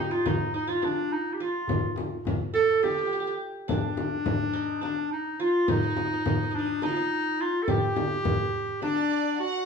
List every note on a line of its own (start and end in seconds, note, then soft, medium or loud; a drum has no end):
0.00 0.13 D#4 medium
0.00 0.25 D#4 medium
0.00 0.11 F4 medium
0.00 0.94 G4 medium
0.11 0.67 F4 medium
0.11 0.29 F4 medium
0.25 0.54 D#4 medium
0.25 0.55 D#4 medium
0.25 darbuka dum medium
0.25 frame drum medium
0.54 0.88 D#4 medium
0.54 0.71 D#4 medium
0.54 darbuka ka soft
0.67 1.40 F4 medium
0.67 0.86 F4 medium
0.82 2.32 D4 medium
0.82 1.14 D4 medium
0.82 darbuka tek medium
0.82 frame drum medium
1.13 1.35 D#4 medium
1.34 1.44 G4 medium
1.40 2.75 F4 medium
1.40 1.98 F4 medium
1.40 darbuka ka soft
1.68 darbuka dum medium
1.68 frame drum medium
1.96 darbuka tek medium
1.96 frame drum medium
2.25 darbuka dum medium
2.25 frame drum medium
2.54 3.71 A4 medium
2.54 2.85 A4 loud
2.83 2.90 G4 medium
2.83 3.40 G4 medium
2.83 darbuka tek medium
2.83 frame drum medium
2.90 2.98 G4 soft
2.98 3.06 G4 soft
3.06 3.12 G4 soft
3.13 3.20 G4 medium
3.20 3.27 G4 medium
3.27 4.53 G4 medium
3.68 4.59 D4 medium
3.68 4.79 D4 medium
3.68 darbuka dum medium
3.68 frame drum medium
3.97 darbuka tek medium
3.97 frame drum medium
4.26 frame drum medium
4.26 darbuka dum medium
4.53 4.87 D#4 medium
4.81 5.74 D4 medium
4.81 5.09 D4 medium
4.81 darbuka tek medium
4.81 frame drum soft
5.12 5.42 D#4 medium
5.40 6.74 F4 medium
5.40 5.71 F4 medium
5.68 5.75 D#4 medium
5.68 6.57 D#4 loud
5.68 frame drum medium
5.68 darbuka dum medium
5.75 5.82 D#4 soft
5.82 5.90 D#4 medium
5.90 5.97 D#4 soft
5.97 6.05 D#4 soft
5.97 darbuka tek medium
5.97 frame drum medium
6.05 6.12 D#4 soft
6.13 6.20 D#4 soft
6.20 6.27 D#4 soft
6.26 6.35 D#4 medium
6.26 frame drum medium
6.26 darbuka dum medium
6.35 6.42 D#4 soft
6.43 6.50 D#4 medium
6.51 6.58 D#4 soft
6.55 6.85 D4 medium
6.55 6.65 D#4 medium
6.65 6.83 D#4 soft
6.82 6.96 D#4 medium
6.82 7.42 D#4 loud
6.82 darbuka tek medium
6.82 frame drum medium
6.89 8.23 F4 medium
6.96 8.41 D#4 medium
7.41 7.64 F4 medium
7.62 7.71 A4 medium
7.68 9.07 G4 medium
7.68 8.82 G4 loud
7.68 frame drum medium
7.68 darbuka dum medium
7.96 darbuka tek medium
7.96 frame drum medium
8.25 frame drum medium
8.25 darbuka dum medium
8.54 darbuka ka soft
8.82 9.65 D4 medium
8.82 9.36 D4 loud
8.82 9.36 D5 medium
8.82 darbuka tek medium
8.82 frame drum medium
9.40 9.65 F#4 medium
9.40 9.65 F#5 medium